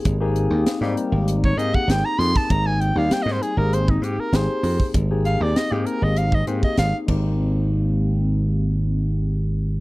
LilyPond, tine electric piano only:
\new Staff \with { instrumentName = "Tine electric piano" } { \time 4/4 \key aes \major \tempo 4 = 98 <bes c' ees' g' aes'>16 <bes c' ees' g' aes'>4 <g bes c' ees' g'>4~ <g bes c' ees' g'>16 <bes c' ees' g' aes'>4 <bes c' ees' g' aes'>8~ | <bes c' ees' g' aes'>8. <g bes c' ees' g'>4 <bes c' ees' g' aes'>4~ <bes c' ees' g' aes'>16 <bes c' ees' g' aes'>4~ | <bes c' ees' g' aes'>16 <bes c' ees' g' aes'>4 <bes c' ees' g' aes'>4~ <bes c' ees' g' aes'>16 <bes c' ees' g' aes'>4 <aes bes c' ees' g'>8~ | <aes bes c' ees' g'>1 | }